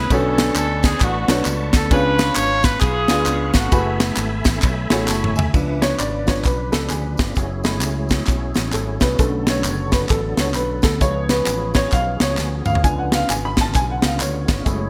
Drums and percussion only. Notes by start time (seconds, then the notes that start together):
0.10 kick, ride bell, tambourine
0.38 snare, ride bell, tambourine
0.56 clap, ride bell, tambourine
0.83 kick, snare, ride bell, tambourine
1.00 kick, clap, ride bell, tambourine
1.28 snare, ride bell, tambourine
1.45 clap, ride bell, tambourine
1.73 kick, snare, ride bell, tambourine
1.91 kick, ride bell, tambourine
2.18 snare, ride bell, tambourine
2.35 clap, ride bell, tambourine
2.63 kick, snare, ride bell, tambourine
2.81 kick, clap, ride bell, tambourine
3.08 snare, ride bell, tambourine
3.26 clap, ride bell, tambourine
3.53 kick, snare, ride bell, tambourine
3.72 kick, ride bell, tambourine
4.00 snare, ride bell, tambourine
4.17 clap, ride bell, tambourine
4.44 kick, snare, ride bell, tambourine
4.62 kick, clap, ride bell, tambourine
4.90 snare, ride bell, tambourine
5.08 snare, clap, tambourine
5.24 mid tom
5.36 floor tom, tambourine
5.54 kick, crash, tambourine
5.82 snare, closed hi-hat, tambourine
5.99 clap, closed hi-hat, tambourine
6.27 kick, snare, closed hi-hat, tambourine
6.45 kick, clap, closed hi-hat, tambourine
6.72 snare, closed hi-hat, tambourine
6.90 clap, closed hi-hat, tambourine
7.17 kick, snare, closed hi-hat, tambourine
7.35 kick, closed hi-hat, tambourine
7.64 snare, closed hi-hat, tambourine
7.81 clap, closed hi-hat, tambourine
8.09 kick, snare, closed hi-hat, tambourine
8.27 kick, clap, closed hi-hat, tambourine
8.54 snare, closed hi-hat, tambourine
8.72 clap, closed hi-hat, tambourine
9.00 kick, snare, closed hi-hat, tambourine
9.19 kick, closed hi-hat, tambourine
9.47 snare, closed hi-hat, tambourine
9.64 clap, closed hi-hat, tambourine
9.92 kick, snare, closed hi-hat, tambourine
10.09 kick, clap, closed hi-hat, tambourine
10.37 snare, closed hi-hat, tambourine
10.54 clap, closed hi-hat, tambourine
10.82 kick, snare, closed hi-hat, tambourine
11.01 kick, closed hi-hat, tambourine
11.29 snare, closed hi-hat, tambourine
11.46 clap, closed hi-hat, tambourine
11.74 kick, snare, closed hi-hat, tambourine
11.92 kick, clap, closed hi-hat, tambourine
12.20 snare, closed hi-hat, tambourine
12.37 snare, clap, tambourine
12.65 mid tom, tambourine
12.75 floor tom
12.84 kick, closed hi-hat, tambourine
13.12 snare, closed hi-hat, tambourine
13.29 clap, closed hi-hat, tambourine
13.57 kick, snare, closed hi-hat, tambourine
13.74 kick, clap, closed hi-hat, tambourine
14.02 snare, closed hi-hat, tambourine
14.20 clap, closed hi-hat, tambourine
14.48 kick, snare, closed hi-hat, tambourine
14.66 kick, closed hi-hat, tambourine